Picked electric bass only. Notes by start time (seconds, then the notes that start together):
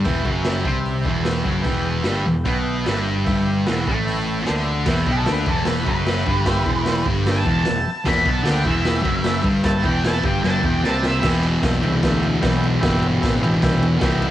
0.06 E1
0.26 F#1
0.67 C2
1.06 E1
1.46 F#1
1.65 E1
2.06 G1
2.27 E1
2.47 B1
2.87 G1
3.27 G1
3.69 E1
3.87 A1
4.50 D2
4.88 E1
5.08 B1
5.30 D2
5.47 E1
5.87 F#1
6.27 G1
6.67 E1
7.06 G1
7.47 E1
7.69 E1
8.06 E1
8.26 B1
8.49 D2
8.66 E1
9.06 F#1
9.44 G1
9.85 E1
10.24 G1
10.45 F#1
10.64 E1
10.84 C2
11.24 E1
11.64 B1
11.85 C2
12.03 D2
12.43 B1
12.83 G1
13.24 A1
13.63 C2
13.82 E2
14.02 C2